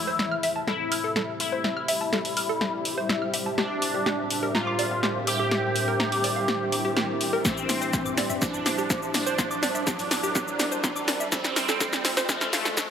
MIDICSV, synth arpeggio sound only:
0, 0, Header, 1, 2, 480
1, 0, Start_track
1, 0, Tempo, 483871
1, 1631, Time_signature, 4, 2, 24, 8
1, 12798, End_track
2, 0, Start_track
2, 0, Title_t, "Synth arpeggio sound"
2, 0, Program_c, 0, 84
2, 73, Note_on_c, 0, 72, 104
2, 147, Note_off_c, 0, 72, 0
2, 190, Note_on_c, 0, 88, 95
2, 267, Note_off_c, 0, 88, 0
2, 312, Note_on_c, 0, 89, 96
2, 362, Note_off_c, 0, 89, 0
2, 431, Note_on_c, 0, 76, 97
2, 482, Note_off_c, 0, 76, 0
2, 553, Note_on_c, 0, 81, 79
2, 602, Note_off_c, 0, 81, 0
2, 671, Note_on_c, 0, 69, 81
2, 748, Note_off_c, 0, 69, 0
2, 911, Note_on_c, 0, 89, 97
2, 962, Note_off_c, 0, 89, 0
2, 1033, Note_on_c, 0, 69, 101
2, 1107, Note_off_c, 0, 69, 0
2, 1150, Note_on_c, 0, 69, 99
2, 1181, Note_off_c, 0, 69, 0
2, 1512, Note_on_c, 0, 72, 101
2, 1586, Note_off_c, 0, 72, 0
2, 1630, Note_on_c, 0, 88, 97
2, 1707, Note_off_c, 0, 88, 0
2, 1752, Note_on_c, 0, 89, 101
2, 1802, Note_off_c, 0, 89, 0
2, 1870, Note_on_c, 0, 76, 99
2, 1921, Note_off_c, 0, 76, 0
2, 1993, Note_on_c, 0, 81, 79
2, 2042, Note_off_c, 0, 81, 0
2, 2110, Note_on_c, 0, 69, 81
2, 2187, Note_off_c, 0, 69, 0
2, 2351, Note_on_c, 0, 89, 102
2, 2402, Note_off_c, 0, 89, 0
2, 2474, Note_on_c, 0, 69, 102
2, 2547, Note_off_c, 0, 69, 0
2, 2590, Note_on_c, 0, 69, 98
2, 2621, Note_off_c, 0, 69, 0
2, 2952, Note_on_c, 0, 72, 105
2, 3026, Note_off_c, 0, 72, 0
2, 3070, Note_on_c, 0, 88, 100
2, 3147, Note_off_c, 0, 88, 0
2, 3192, Note_on_c, 0, 89, 92
2, 3242, Note_off_c, 0, 89, 0
2, 3311, Note_on_c, 0, 76, 97
2, 3362, Note_off_c, 0, 76, 0
2, 3434, Note_on_c, 0, 81, 79
2, 3483, Note_off_c, 0, 81, 0
2, 3551, Note_on_c, 0, 67, 82
2, 3628, Note_off_c, 0, 67, 0
2, 3790, Note_on_c, 0, 86, 98
2, 3841, Note_off_c, 0, 86, 0
2, 3912, Note_on_c, 0, 67, 101
2, 3986, Note_off_c, 0, 67, 0
2, 4030, Note_on_c, 0, 67, 103
2, 4061, Note_off_c, 0, 67, 0
2, 4392, Note_on_c, 0, 70, 105
2, 4466, Note_off_c, 0, 70, 0
2, 4510, Note_on_c, 0, 82, 96
2, 4587, Note_off_c, 0, 82, 0
2, 4632, Note_on_c, 0, 86, 101
2, 4682, Note_off_c, 0, 86, 0
2, 4750, Note_on_c, 0, 74, 99
2, 4802, Note_off_c, 0, 74, 0
2, 4874, Note_on_c, 0, 77, 76
2, 4923, Note_off_c, 0, 77, 0
2, 4991, Note_on_c, 0, 67, 81
2, 5067, Note_off_c, 0, 67, 0
2, 5230, Note_on_c, 0, 86, 108
2, 5282, Note_off_c, 0, 86, 0
2, 5352, Note_on_c, 0, 67, 109
2, 5426, Note_off_c, 0, 67, 0
2, 5471, Note_on_c, 0, 67, 95
2, 5501, Note_off_c, 0, 67, 0
2, 5832, Note_on_c, 0, 70, 103
2, 5906, Note_off_c, 0, 70, 0
2, 5950, Note_on_c, 0, 82, 100
2, 6027, Note_off_c, 0, 82, 0
2, 6072, Note_on_c, 0, 86, 94
2, 6122, Note_off_c, 0, 86, 0
2, 6189, Note_on_c, 0, 74, 100
2, 6241, Note_off_c, 0, 74, 0
2, 6311, Note_on_c, 0, 77, 79
2, 6361, Note_off_c, 0, 77, 0
2, 6429, Note_on_c, 0, 67, 85
2, 6506, Note_off_c, 0, 67, 0
2, 6670, Note_on_c, 0, 86, 99
2, 6721, Note_off_c, 0, 86, 0
2, 6793, Note_on_c, 0, 67, 101
2, 6867, Note_off_c, 0, 67, 0
2, 6910, Note_on_c, 0, 67, 101
2, 6941, Note_off_c, 0, 67, 0
2, 7272, Note_on_c, 0, 70, 110
2, 7346, Note_off_c, 0, 70, 0
2, 7389, Note_on_c, 0, 67, 101
2, 7420, Note_off_c, 0, 67, 0
2, 7753, Note_on_c, 0, 72, 106
2, 7827, Note_off_c, 0, 72, 0
2, 7870, Note_on_c, 0, 84, 100
2, 7947, Note_off_c, 0, 84, 0
2, 7993, Note_on_c, 0, 86, 98
2, 8042, Note_off_c, 0, 86, 0
2, 8110, Note_on_c, 0, 74, 102
2, 8161, Note_off_c, 0, 74, 0
2, 8232, Note_on_c, 0, 76, 78
2, 8282, Note_off_c, 0, 76, 0
2, 8351, Note_on_c, 0, 67, 81
2, 8428, Note_off_c, 0, 67, 0
2, 8590, Note_on_c, 0, 86, 101
2, 8641, Note_off_c, 0, 86, 0
2, 8713, Note_on_c, 0, 67, 103
2, 8762, Note_off_c, 0, 67, 0
2, 8830, Note_on_c, 0, 67, 101
2, 8861, Note_off_c, 0, 67, 0
2, 9191, Note_on_c, 0, 72, 111
2, 9266, Note_off_c, 0, 72, 0
2, 9309, Note_on_c, 0, 84, 102
2, 9387, Note_off_c, 0, 84, 0
2, 9431, Note_on_c, 0, 86, 107
2, 9481, Note_off_c, 0, 86, 0
2, 9549, Note_on_c, 0, 74, 102
2, 9601, Note_off_c, 0, 74, 0
2, 9671, Note_on_c, 0, 76, 81
2, 9721, Note_off_c, 0, 76, 0
2, 9789, Note_on_c, 0, 67, 82
2, 9867, Note_off_c, 0, 67, 0
2, 10030, Note_on_c, 0, 86, 106
2, 10081, Note_off_c, 0, 86, 0
2, 10152, Note_on_c, 0, 67, 104
2, 10202, Note_off_c, 0, 67, 0
2, 10270, Note_on_c, 0, 67, 99
2, 10301, Note_off_c, 0, 67, 0
2, 10633, Note_on_c, 0, 72, 101
2, 10707, Note_off_c, 0, 72, 0
2, 10750, Note_on_c, 0, 84, 103
2, 10827, Note_off_c, 0, 84, 0
2, 10873, Note_on_c, 0, 86, 99
2, 10922, Note_off_c, 0, 86, 0
2, 10990, Note_on_c, 0, 74, 102
2, 11042, Note_off_c, 0, 74, 0
2, 11113, Note_on_c, 0, 76, 82
2, 11162, Note_off_c, 0, 76, 0
2, 11231, Note_on_c, 0, 69, 86
2, 11307, Note_off_c, 0, 69, 0
2, 11470, Note_on_c, 0, 89, 106
2, 11522, Note_off_c, 0, 89, 0
2, 11594, Note_on_c, 0, 69, 105
2, 11643, Note_off_c, 0, 69, 0
2, 11711, Note_on_c, 0, 69, 98
2, 11741, Note_off_c, 0, 69, 0
2, 12073, Note_on_c, 0, 72, 108
2, 12147, Note_off_c, 0, 72, 0
2, 12190, Note_on_c, 0, 89, 101
2, 12267, Note_off_c, 0, 89, 0
2, 12313, Note_on_c, 0, 89, 104
2, 12362, Note_off_c, 0, 89, 0
2, 12431, Note_on_c, 0, 77, 98
2, 12482, Note_off_c, 0, 77, 0
2, 12553, Note_on_c, 0, 81, 77
2, 12602, Note_off_c, 0, 81, 0
2, 12670, Note_on_c, 0, 69, 80
2, 12747, Note_off_c, 0, 69, 0
2, 12798, End_track
0, 0, End_of_file